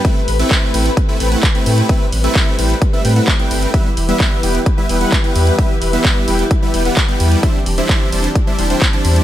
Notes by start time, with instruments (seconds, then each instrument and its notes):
Already playing: string section B4
0.05 string section C3 A3, supersaw synth A3 C4 E4 B4 E5, kick, closed hi-hat
0.28 sub bass A1, open hi-hat
0.39 supersaw synth A3 C4 E4 B4 E5, closed hi-hat
0.51 kick, clap, closed hi-hat
0.74 sub bass A1, supersaw synth A3 C4 E4 B4 G5, open hi-hat
0.86 closed hi-hat
0.97 kick, closed hi-hat
1.09 supersaw synth A3 C4 E4 B4 E5
1.20 sub bass A1, supersaw synth A3 C4 E4 B4 G5, open hi-hat
1.32 supersaw synth A3 C4 E4 B4 F#5, closed hi-hat
1.43 kick, clap, closed hi-hat
1.55 supersaw synth A3 C4 E4 B4 G5, closed hi-hat
1.66 sub bass A2, open hi-hat
1.78 closed hi-hat
1.89 string section G3, supersaw synth A3 C4 E4 B4 E5, kick, closed hi-hat
2.12 sub bass A1, open hi-hat
2.24 supersaw synth A3 C4 E4 B4 E5, closed hi-hat
2.35 kick, clap, closed hi-hat
2.59 sub bass A1, supersaw synth A3 C4 E4 B4 G5, open hi-hat
2.70 closed hi-hat
2.82 kick, closed hi-hat
2.93 supersaw synth A3 C4 E4 B4 E5
3.05 sub bass A2, supersaw synth A3 C4 E4 B4 G5, open hi-hat
3.16 supersaw synth A3 C4 E4 B4 F#5, closed hi-hat
3.28 kick, clap, closed hi-hat
3.39 supersaw synth A3 C4 E4 B4 G5, closed hi-hat
3.51 sub bass G1, open hi-hat
3.63 closed hi-hat
3.74 string section E3 E4 G4 B4, supersaw synth G3 B3 E4 B4 E5, kick, closed hi-hat
3.97 sub bass E1, open hi-hat
4.09 supersaw synth G3 B3 E4 B4 E5, closed hi-hat
4.20 kick, clap, closed hi-hat
4.43 sub bass E1, supersaw synth G3 B3 E4 B4 G5, open hi-hat
4.55 closed hi-hat
4.66 kick, closed hi-hat
4.78 supersaw synth G3 B3 E4 B4 E5
4.89 sub bass E1, supersaw synth G3 B3 E4 B4 G5, open hi-hat
5.01 supersaw synth G3 B3 E4 B4 F#5, closed hi-hat
5.12 kick, clap, closed hi-hat
5.24 supersaw synth G3 B3 E4 B4 G5, closed hi-hat
5.35 sub bass E2, open hi-hat
5.47 closed hi-hat
5.58 supersaw synth G3 B3 E4 B4 E5, kick, closed hi-hat
5.81 sub bass E1, open hi-hat
5.93 supersaw synth G3 B3 E4 B4 E5, closed hi-hat
6.05 kick, clap, closed hi-hat
6.28 sub bass E1, supersaw synth G3 B3 E4 B4 G5, open hi-hat
6.39 closed hi-hat
6.51 kick, closed hi-hat
6.62 supersaw synth G3 B3 E4 B4 E5
6.74 sub bass E1, supersaw synth G3 B3 E4 B4 G5, open hi-hat
6.85 supersaw synth G3 B3 E4 B4 F#5, closed hi-hat
6.97 kick, clap, closed hi-hat
7.08 supersaw synth G3 B3 E4 B4 G5, closed hi-hat
7.20 sub bass E2, open hi-hat
7.32 closed hi-hat
7.43 supersaw synth G3 D4 E4 C5 E5, string section C4 D4, kick, closed hi-hat
7.66 sub bass E1, open hi-hat
7.78 supersaw synth G3 D4 E4 C5 E5, closed hi-hat
7.89 kick, clap, closed hi-hat
8.12 sub bass E1, supersaw synth G3 D4 E4 C5 A5, open hi-hat
8.24 closed hi-hat
8.35 kick, closed hi-hat
8.47 supersaw synth G3 D4 E4 C5 E5
8.59 sub bass E1, supersaw synth G3 D4 E4 C5 A5, open hi-hat
8.70 supersaw synth G3 D4 E4 C5 G5, closed hi-hat
8.82 kick, clap, closed hi-hat
8.93 supersaw synth G3 D4 E4 C5 A5, closed hi-hat
9.05 sub bass E2, open hi-hat
9.16 closed hi-hat